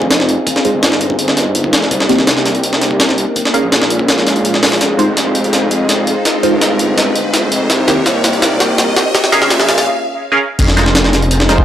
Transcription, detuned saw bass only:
0.00 0.36 F1 loud
0.74 1.72 G1 medium
1.73 1.89 F1 loud
1.91 3.25 C2 loud
3.63 4.61 A#1 loud
4.62 4.79 A#1 medium
4.81 6.15 F1 loud
6.52 7.50 G1 loud
7.51 7.68 F1 loud
7.70 9.04 C2 loud
9.41 9.86 A#1 loud
10.59 11.65 F1 loud

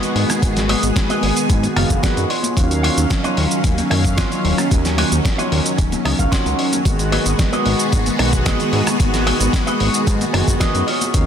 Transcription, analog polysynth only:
0.00 0.39 D#3 medium
0.00 0.39 G#3 medium
0.00 0.39 B3 medium
0.00 0.40 F#4 loud
0.41 1.73 D#3 medium
0.41 1.73 G#3 medium
0.41 1.73 B3 medium
0.41 1.74 F#4 medium
1.76 2.28 D#3 medium
1.76 2.28 G#3 medium
1.76 2.29 B3 medium
1.76 2.29 F#4 loud
2.56 3.87 D#3 medium
2.56 3.87 F#3 medium
2.56 3.88 C#4 medium
2.56 3.88 F5 medium
3.90 4.67 D#3 medium
3.90 4.68 F#3 medium
3.90 4.68 C#4 medium
3.90 4.68 F5 loud
4.70 6.01 D#3 medium
4.70 6.02 F#3 medium
4.70 6.02 C#4 medium
6.04 6.82 D#3 medium
6.04 6.82 F#3 medium
6.04 6.83 C#4 medium
6.85 8.16 D#3 medium
6.85 8.16 G#3 medium
6.85 8.17 B3 medium
6.85 8.17 F#4 medium
8.18 8.96 D#3 medium
8.18 8.96 G#3 medium
8.18 8.97 B3 medium
8.18 8.97 F#4 loud
8.99 10.30 D#3 medium
8.99 10.30 G#3 medium
8.99 10.31 B3 medium
8.99 10.31 F#4 loud
10.33 10.85 D#3 medium
10.33 10.85 G#3 medium
10.33 10.86 B3 medium
10.33 10.86 F#4 medium
11.13 11.26 D#3 medium
11.13 11.26 F#3 medium
11.13 11.26 C#4 medium
11.13 11.26 F5 medium

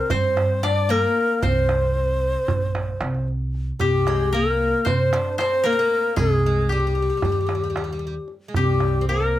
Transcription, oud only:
0.10 0.63 C4 medium
0.63 0.91 D4 medium
0.89 1.44 A#3 medium
1.42 3.23 C4 medium
3.80 4.04 G3 medium
4.08 4.34 G#3 medium
4.34 4.88 A#3 medium
4.87 5.13 C4 medium
5.13 5.40 D4 medium
5.41 5.67 C4 medium
5.65 5.73 A#3 medium
5.73 5.79 C4 medium
5.79 6.19 A#3 medium
6.19 6.45 G#3 medium
6.46 6.72 G#3 medium
6.72 6.79 G3 medium
6.80 6.86 G3 soft
6.87 6.93 G3 soft
6.95 7.01 G3 soft
7.02 7.09 G3 soft
7.10 7.16 G3 soft
7.17 7.24 G3 soft
7.25 7.31 G3 soft
7.32 7.38 G3 soft
7.41 7.45 G3 soft
7.47 7.53 G3 soft
7.55 7.61 G3 soft
7.64 7.69 G3 soft
7.70 7.76 G3 soft
7.77 7.83 G3 soft
7.84 7.91 G3 soft
7.92 7.98 G3 soft
7.99 8.06 G3 soft
8.07 8.14 G3 soft
8.48 8.55 G#3 soft
8.56 9.03 G3 medium
9.01 9.08 C4 medium
9.09 9.39 A#3 medium

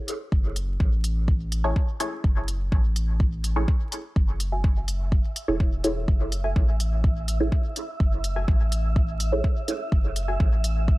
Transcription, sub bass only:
0.32 0.77 F#1 loud
0.80 1.73 A1 medium
2.24 2.69 F#1 medium
2.72 3.65 A1 medium
4.16 5.21 F#1 medium
5.48 6.05 E1 loud
6.08 6.53 F#1 medium
6.56 7.49 A1 medium
8.00 8.45 F#1 medium
8.48 9.41 A1 medium
9.92 10.37 F#1 loud
10.40 10.98 A1 medium

